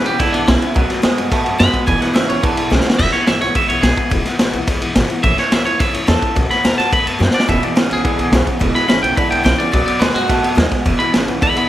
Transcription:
Already playing: E2 C#3
0.05 B1 E3 G#3 B3 E4 G4, ride
0.19 C#2 E2 D3 E3 G#3 B3 E4, kick, snare, ride
0.32 B1 E3 G#3 B3 D4 E4, ride
0.47 B1 E2 B2 C#3 E3 G#3 B3 E4, snare, ride
0.61 E3 G#3 B3 E4, ride
0.74 B1 B2 D#3 F#3 A3 B3 F#4, kick, ride
0.88 A3 B3 F#4, snare, ride
1.02 D#2 B2 D#3 G#3 A3 B3 F#4, snare, ride
1.16 F#2 A3 B3 F#4, ride
1.30 A2 B2 D#3 A3 B3 F#4, kick, snare, ride
1.44 F#2 A3 B3 F#4, ride
1.58 F#2 B2 D#3 G#3 A3 B3 F#4 B5, snare, ride
1.72 A3 B3 F#4, kick, ride
1.86 E1 E2 B2 E3 G#3 B3 E4 G#5, kick, ride
2.00 E3 G#3 B3 E4 F#5, muted upright bass stroke, snare, ride
2.13 G#1 E2 B2 C#3 E3 G#3 B3 E4 E5, snare, ride
2.28 B1 E3 G#3 B3 E4 C#5, ride
2.42 C#2 E2 D3 E3 G#3 B3 E4 B4, kick, ride
2.56 B1 E3 G#3 B3 E4 G#4, ride
2.70 B1 E2 B2 C#3 E3 G#3 B3 E4 F#4, snare
2.81 E4, snare
2.85 E3 G#3 B3
2.90 snare
2.98 E1 E2 B2 E3 G#3 B3 E4 E5, kick, crash
3.12 E3 G#3 B3 E4 C#5, muted upright bass stroke, snare, ride
3.27 G#1 E2 B2 E3 G#3 B3 E4 E5, snare, ride
3.40 B1 E3 G#3 B3 E4 C#5, snare, ride
3.54 E3 G#3 B3 E4 E5, kick, ride
3.68 B1 E3 G#3 B3 E4 C#5, ride
3.82 B1 E2 B2 E3 G#3 B3 E4 G#4, snare, ride
3.96 E3 G#3 B3 E4, kick, ride
4.10 E1 E2 B2 E3 G#3 B3 E4, kick, ride
4.25 E3 G#3 B3 E4, muted upright bass stroke, snare, ride
4.39 G#1 E2 B2 E3 G#3 B3 E4, snare, ride
4.53 B1 E3 G#3 B3 E4, ride
4.67 C#2 E3 G#3 B3 E4, kick, snare, ride
4.81 B1 E3 G#3 B3 E4, ride
4.95 G#1 E2 B2 E3 G#3 B3 E4, snare, ride
5.09 E3 G#3 B3 E4, muted upright bass stroke, ride
5.23 A1 A2 E3 A3 C#4 E4 E5, kick, ride
5.37 A3 C#4 E4 C#5, muted upright bass stroke, snare, ride
5.51 C#2 A2 E3 A3 C#4 E4 E5, snare, ride
5.65 E2 A3 C#4 E4 C#5, ride
5.79 F#2 E3 A3 C#4 E4 E5, kick, snare, ride
5.93 E2 A3 C#4 E4 C#5, ride
6.07 E2 A2 E3 A3 C#4 E4 A4, snare, ride
6.21 A3 C#4 E4, kick, ride
6.36 B1 B2 D#3 A3 B3 F#4, kick, ride
6.48 A3 B3 F#4 B5, muted upright bass stroke, snare, ride
6.64 D#2 B2 D#3 A3 B3 F#4 A#5, snare, ride
6.77 F#2 A3 B3 F#4 A5, snare, ride
6.91 A2 D#3 A3 B3 F#4 B5, kick, ride
7.05 F#2 A3 B3 F#4 A5, ride
7.19 F#2 B2 D#3 A3 B3 F#4 G5, snare
7.31 B3 F#4 D5, snare
7.35 A3, muted upright bass stroke
7.40 snare
7.47 E1 E2 B2 E3 G#3 B3 E4 E5, kick, ride
7.62 E3 G#3 B3 E4 D5, muted upright bass stroke, ride
7.75 G#1 E2 B2 C#3 E3 G#3 B3 E4 B4, snare, ride
7.90 B1 E3 G#3 B3 E4 G#4, snare, ride
8.04 C#2 E2 D3 E3 G#3 B3 E4, kick, ride
8.19 B1 E3 G#3 B3 E4, ride
8.32 B1 E2 B2 C#3 E3 G#3 B3 E4, snare, ride
8.47 E3 G#3 B3 E4, kick, ride
8.59 E1 E2 B2 E3 G#3 B3 E4, kick, ride
8.74 E3 G#3 B3 E4 B5, muted upright bass stroke, snare, ride
8.88 G#1 E2 B2 C#3 E3 G#3 B3 E4 B5, snare, ride
9.01 B1 E3 G#3 B3 E4 G5, ride
9.15 E2 D3 E3 G#3 B3 E4 B5, kick, ride
9.29 B1 E3 G#3 B3 E4 G5, ride
9.43 B1 E2 B2 C#3 E3 G#3 B3 E4 G5, snare, ride
9.58 E3 G#3 B3 E4 D5, ride
9.71 B1 B2 D#3 F#3 A3 B3 F#4 D5, kick, ride
9.84 A3 B3 F#4 D5, ride
9.99 D#2 B2 D#3 G#3 A3 B3 F#4 B4, snare, ride
10.14 F#2 A3 B3 F#4, snare, ride
10.28 A2 B2 D#3 A3 B3 F#4, kick, snare, ride
10.42 F#2 A3 B3 F#4, ride
10.55 D#2 B2 D#3 G#3 A3 B3 F#4, snare, ride
10.70 A3 B3 F#4, kick, snare, ride
10.85 E1 E2 B2 E3 G#3 B3 E4, kick, ride
10.99 E3 G#3 B3 E4 B5, muted upright bass stroke, ride
11.13 G#1 E2 B2 C#3 E3 G#3 B3 E4, snare, ride
11.27 B1 E3 G#3 B3 E4, ride
11.41 C#2 E2 D3 E3 G#3 B3 E4 B5, kick, ride
11.55 E3 G#3 B3 E4 B5, ride

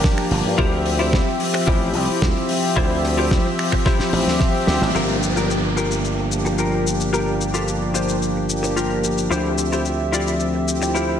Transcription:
0.04 F3 A#3 D4 G4, kick, snare
0.18 finger snap
0.31 G1, open hi-hat
0.45 G2
0.58 D2 F3 C4 E4 F4 G4 C5 E5, kick
0.86 open hi-hat
0.99 E4 F4 G4 C5
1.13 kick, snare
1.40 open hi-hat
1.54 finger snap, muted clean electric guitar stroke
1.67 A1 E4 F4 G4 C5, kick
1.94 C2 F3 C4 E4 G4, open hi-hat
2.09 muted slap bass stroke
2.22 D2 F3 C4 G4 E5, kick, snare
2.49 open hi-hat
2.76 D2 F3 C4 E4 F4 G4 C5 E5, kick
3.03 snare, open hi-hat
3.18 E4 F4 G4 C5
3.31 kick, snare
3.59 finger snap, open hi-hat
3.72 finger snap, muted clean electric guitar stroke, kick
3.86 E4 F4 G4 C5, kick, snare
4.00 muted slap bass stroke, snare, open hi-hat
4.12 A1 F3 C4 G4 E5, open hi-hat
4.27 D2, snare
4.40 kick, snare
4.67 D2, snare, open hi-hat
4.82 A1, snare
4.94 G1 F3 A#3 D4 F4 G4 A#4, downlifter, shaker
5.23 shaker
5.36 F4 G4 A#4, shaker
5.50 shaker
5.64 muted clean electric guitar stroke
5.77 F4 G4 A#4, shaker
5.91 shaker
6.05 shaker
6.18 muted clean electric guitar stroke
6.31 F3 A#3 D4 G4, shaker
6.45 muted clean electric guitar stroke, shaker
6.58 F3 A#3 D4 F4 G4 A#4, shaker
6.87 shaker
7.01 shaker
7.12 F3 A#3 D4 F4 G4 A#4, shaker
7.41 shaker
7.54 F4 G4 A4, shaker
7.68 shaker
7.81 muted clean electric guitar stroke
7.94 F4 G4 C5, shaker
8.09 shaker
8.22 shaker
8.36 muted clean electric guitar stroke
8.49 F3 A#3 D4 G4, shaker
8.63 muted clean electric guitar stroke, shaker
8.76 F3 A#3 D4 F4 G4 A#4, shaker
9.04 shaker
9.18 shaker
9.30 D2 F3 C4 E4 F4 G4 C5 E5, shaker
9.58 shaker
9.72 E4 F4 G4 C5, shaker
9.85 shaker
10.00 muted clean electric guitar stroke
10.12 E4 F4 G4 D5, shaker
10.28 shaker
10.40 shaker
10.54 muted clean electric guitar stroke
10.67 F3 C4 E4 G4, shaker
10.82 muted clean electric guitar stroke, shaker
10.94 F3 C4 E4 F4 G4 C5 E5, shaker

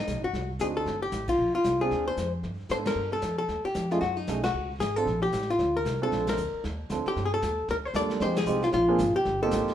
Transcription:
Already playing: D#4
0.07 B1, snare, hi-hat pedal
0.16 A1
0.24 G1 F#4
0.33 C2, brush sweep, snare
0.59 D2 C4 D4 D#4 F#4 G#4, snare, hi-hat pedal
0.77 A4
0.85 G1, brush sweep, snare
1.02 G4
1.12 A1, snare, hi-hat pedal
1.27 F4, kick, ride
1.38 A#1, brush sweep
1.55 F4
1.64 C2, snare, hi-hat pedal
1.81 C4 D4 F4 G#4
1.91 D2, brush sweep, snare
2.08 C5
2.17 F2, snare, hi-hat pedal
2.43 G2, brush sweep, snare
2.69 G#2 B3 D4 F4 A4 C5, snare, hi-hat pedal
2.85 A#4, snare, ride
2.95 G2, brush sweep
3.13 A4
3.22 F2, snare, hi-hat pedal
3.38 A4
3.48 D#2, brush sweep, snare
3.64 G4, muted upright bass stroke
3.74 F2, snare, hi-hat pedal
3.91 A3 C#4 D#4 F4 G#4, snare
4.01 F#2 F#4, brush sweep, snare
4.17 D#4
4.27 B1 A3 C#4 D#4 G#4, snare, hi-hat pedal
4.43 F#4, snare, ride
4.54 C#2, brush sweep
4.79 G#1 G#4, snare, hi-hat pedal
4.96 C4 D4 F4 A4
5.05 A#1, brush sweep, snare
5.23 G4
5.32 A1, snare, hi-hat pedal
5.41 snare
5.50 F4, snare
5.59 D2, brush sweep, snare
5.77 A#4
5.85 C2, snare, hi-hat pedal
6.02 C4 D4 F4 A4
6.11 A#1, brush sweep, snare
6.27 A#4, snare, ride
6.37 D2, hi-hat pedal
6.54 muted upright bass stroke
6.64 D#2, brush sweep, snare
6.89 D2 C4 D4 F4 A4, snare, hi-hat pedal
7.06 G4, muted upright bass stroke, snare
7.16 G2, brush sweep, snare
7.25 G#4
7.34 A4
7.42 D#2, snare, hi-hat pedal
7.68 D2 A#4, brush sweep, snare
7.85 C5
7.94 D#2 G3 A#3 D4 F4 A4 D5, snare, hi-hat pedal
8.10 snare
8.20 F2 G#3 C4 D#4 F4 G4 C5, brush sweep, snare
8.36 G#4, snare, ride
8.46 C2 G#3 C4 D#4 F4 G4, hi-hat pedal
8.62 F4, snare
8.72 A#1 F4, brush sweep, snare
8.88 A#3 C4 D4 F4 G#4
8.98 G#1, snare, hi-hat pedal
9.15 G4, muted upright bass stroke
9.25 G1, brush sweep, snare
9.42 A#3 C4 D#4 F4 G4 A4
9.51 A1, snare, hi-hat pedal
9.68 muted upright bass stroke, snare

